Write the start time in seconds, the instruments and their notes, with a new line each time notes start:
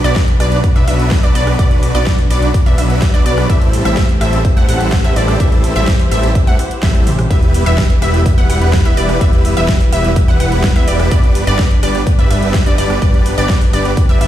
Already playing: string section D4 F#4 B4
0.04 analog synth bass B1, supersaw synth F#3 B3 D4 B4 D5, synth pluck D5, closed hi-hat
0.16 kick, snare, closed hi-hat
0.28 closed hi-hat
0.40 analog synth bass B1, supersaw synth F#3 B3 D4 B4 D5, synth pluck D5, cross-stick, open hi-hat
0.52 closed hi-hat
0.64 kick, closed hi-hat
0.76 analog synth bass B1, supersaw synth F#3 B3 D4 B4 E5, synth pluck E5, closed hi-hat
0.88 analog synth bass B1, supersaw synth F#3 B3 D4 B4 E5, synth pluck E5, open hi-hat
1.00 closed hi-hat
1.11 kick, snare, closed hi-hat
1.23 analog synth bass B1, supersaw synth F#3 B3 D4 B4 D5, synth pluck D5, closed hi-hat
1.35 analog synth bass B1, supersaw synth F#3 B3 D4 B4 D5, synth pluck D5, open hi-hat
1.47 cross-stick, closed hi-hat
1.59 analog synth bass B1, supersaw synth F#3 B3 D4 B4 D5, synth pluck D5, kick, closed hi-hat
1.71 closed hi-hat
1.83 open hi-hat
1.95 analog synth bass B1, supersaw synth F#3 B3 D4 B4 D5, synth pluck D5, closed hi-hat
2.06 kick, snare, closed hi-hat
2.19 open hi-hat
2.30 analog synth bass B1, supersaw synth F#3 B3 D4 B4 D5, synth pluck D5, open hi-hat
2.42 closed hi-hat
2.54 kick, closed hi-hat
2.66 analog synth bass B1, supersaw synth F#3 B3 D4 B4 E5, synth pluck E5, closed hi-hat
2.78 analog synth bass B1, supersaw synth F#3 B3 D4 B4 E5, synth pluck E5, open hi-hat
2.90 closed hi-hat
3.02 kick, snare, closed hi-hat
3.14 analog synth bass B1, supersaw synth F#3 B3 D4 B4 D5, synth pluck D5, closed hi-hat
3.26 analog synth bass B1, supersaw synth F#3 B3 D4 B4 D5, synth pluck D5, open hi-hat
3.38 cross-stick, closed hi-hat
3.50 supersaw synth G3 C4 E4 A4 E5, string section A3 E4 G4 B4 C5, synth pluck E5, kick, closed hi-hat
3.62 closed hi-hat
3.73 open hi-hat
3.85 analog synth bass A1, supersaw synth G3 C4 E4 A4 E5, synth pluck E5, closed hi-hat
3.97 kick, snare, closed hi-hat
4.09 closed hi-hat
4.21 analog synth bass A1, supersaw synth G3 C4 E4 A4 E5, synth pluck E5, cross-stick, open hi-hat
4.33 closed hi-hat
4.45 kick, closed hi-hat
4.57 analog synth bass A1, supersaw synth G3 C4 E4 A4 F#5, synth pluck F#5, closed hi-hat
4.69 analog synth bass A1, supersaw synth G3 C4 E4 A4 F#5, synth pluck F#5, open hi-hat
4.81 closed hi-hat
4.92 kick, snare, closed hi-hat
5.04 analog synth bass A1, supersaw synth G3 C4 E4 A4 E5, synth pluck E5, closed hi-hat
5.16 analog synth bass A1, supersaw synth G3 C4 E4 A4 D5, synth pluck D5, open hi-hat
5.28 cross-stick, closed hi-hat
5.40 supersaw synth G3 C4 E4 A4 E5, synth pluck E5, kick, closed hi-hat
5.52 closed hi-hat
5.64 open hi-hat
5.76 analog synth bass A1, supersaw synth G3 C4 E4 A4 E5, synth pluck E5, closed hi-hat
5.87 kick, snare, closed hi-hat
6.00 open hi-hat
6.11 analog synth bass A1, supersaw synth G3 C4 E4 A4 E5, synth pluck E5, open hi-hat
6.23 closed hi-hat
6.35 kick, closed hi-hat
6.47 analog synth bass A1, supersaw synth G3 C4 E4 A4 F#5, synth pluck F#5, closed hi-hat
6.59 open hi-hat
6.71 closed hi-hat
6.83 analog synth bass A1, supersaw synth G3 C4 E4 A4 E5, synth pluck E5, kick, snare, closed hi-hat
6.95 closed hi-hat, high tom
7.07 open hi-hat, mid tom
7.19 cross-stick, mid tom, open hi-hat
7.31 analog synth bass E1, supersaw synth G3 B3 E4 B4 E5, string section E4 B4, synth pluck E5, kick, closed hi-hat
7.43 closed hi-hat
7.54 open hi-hat
7.66 analog synth bass E1, supersaw synth G3 B3 E4 B4 E5, synth pluck E5, closed hi-hat
7.78 kick, snare, closed hi-hat
7.90 closed hi-hat
8.02 analog synth bass E1, supersaw synth G3 B3 E4 B4 E5, synth pluck E5, cross-stick, open hi-hat
8.14 closed hi-hat
8.26 kick, closed hi-hat
8.38 analog synth bass E1, supersaw synth G3 B3 E4 B4 F#5, synth pluck F#5, closed hi-hat
8.50 analog synth bass E1, supersaw synth G3 B3 E4 B4 F#5, synth pluck F#5, open hi-hat
8.62 closed hi-hat
8.73 kick, snare, closed hi-hat
8.85 analog synth bass E1, supersaw synth G3 B3 E4 B4 E5, synth pluck E5, closed hi-hat
8.97 analog synth bass E1, supersaw synth G3 B3 E4 B4 D5, synth pluck D5, open hi-hat
9.09 cross-stick, closed hi-hat
9.21 analog synth bass E1, supersaw synth G3 B3 E4 B4 E5, synth pluck E5, kick, closed hi-hat
9.33 closed hi-hat
9.45 open hi-hat
9.57 analog synth bass E1, supersaw synth G3 B3 E4 B4 E5, synth pluck E5, closed hi-hat
9.68 kick, snare, closed hi-hat
9.81 open hi-hat
9.92 analog synth bass E1, supersaw synth G3 B3 E4 B4 E5, synth pluck E5, open hi-hat
10.04 closed hi-hat
10.16 kick, closed hi-hat
10.28 analog synth bass E1, supersaw synth G3 B3 E4 B4 F#5, synth pluck F#5, closed hi-hat
10.40 analog synth bass E1, supersaw synth G3 B3 E4 B4 F#5, synth pluck F#5, open hi-hat
10.52 closed hi-hat
10.64 kick, snare, closed hi-hat
10.76 analog synth bass E2, supersaw synth G3 B3 E4 B4 E5, synth pluck E5, closed hi-hat
10.88 analog synth bass E1, supersaw synth G3 B3 E4 B4 D5, synth pluck D5, open hi-hat
11.00 cross-stick, closed hi-hat
11.11 supersaw synth G3 B3 D4 B4 D5, string section D4 G4, synth pluck D5, kick, closed hi-hat
11.23 closed hi-hat
11.35 open hi-hat
11.47 analog synth bass G1, supersaw synth G3 B3 D4 B4 D5, synth pluck D5, closed hi-hat
11.59 kick, snare, closed hi-hat
11.71 closed hi-hat
11.83 analog synth bass G1, supersaw synth G3 B3 D4 B4 D5, synth pluck D5, cross-stick, open hi-hat
11.95 closed hi-hat
12.07 kick, closed hi-hat
12.19 analog synth bass G1, supersaw synth G3 B3 D4 B4 E5, synth pluck E5, closed hi-hat
12.31 analog synth bass G1, supersaw synth G3 B3 D4 B4 E5, synth pluck E5, open hi-hat
12.43 closed hi-hat
12.54 kick, snare, closed hi-hat
12.66 analog synth bass G1, supersaw synth G3 B3 D4 B4 D5, synth pluck D5, closed hi-hat
12.78 analog synth bass G1, supersaw synth G3 B3 D4 B4 D5, synth pluck D5, open hi-hat
12.90 cross-stick, closed hi-hat
13.02 analog synth bass G1, supersaw synth G3 B3 D4 B4 D5, synth pluck D5, kick, closed hi-hat
13.14 closed hi-hat
13.26 open hi-hat
13.38 analog synth bass G1, supersaw synth G3 B3 D4 B4 D5, synth pluck D5, closed hi-hat
13.49 kick, snare, closed hi-hat
13.61 open hi-hat
13.73 analog synth bass G1, supersaw synth G3 B3 D4 B4 D5, synth pluck D5, open hi-hat
13.85 closed hi-hat
13.97 kick, closed hi-hat
14.09 analog synth bass G1, supersaw synth G3 B3 D4 B4 E5, synth pluck E5, closed hi-hat
14.21 analog synth bass G1, supersaw synth G3 B3 D4 B4 E5, synth pluck E5, open hi-hat